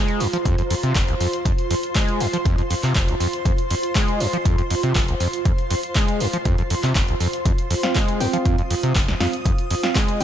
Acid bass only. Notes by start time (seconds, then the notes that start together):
Already playing: G#3
0.20 F2
0.33 F3
0.45 F2
0.58 F2
0.70 F2
0.83 C3
0.95 F1
1.08 F2
1.20 F2
1.45 F2
1.70 F2
1.95 G#3
2.20 F2
2.33 F3
2.45 F2
2.58 F2
2.71 F2
2.83 C3
2.95 F1
3.08 F2
3.20 F2
3.45 F2
3.70 F2
3.95 G#3
4.20 F2
4.33 F3
4.45 F2
4.58 F2
4.70 F2
4.83 C3
4.95 F1
5.08 F2
5.20 F2
5.45 F2
5.71 F2
5.95 G#3
6.21 F2
6.33 F3
6.45 F2
6.58 F2
6.70 F2
6.83 C3
6.95 F1
7.08 F2
7.20 F2
7.45 F2
7.70 F2
7.95 G#3
8.20 F2
8.33 F3
8.45 F2
8.58 F2
8.70 F2
8.83 C3
8.95 F1
9.08 F2
9.20 F2
9.45 F2
9.70 F2
9.95 G#3
10.20 F2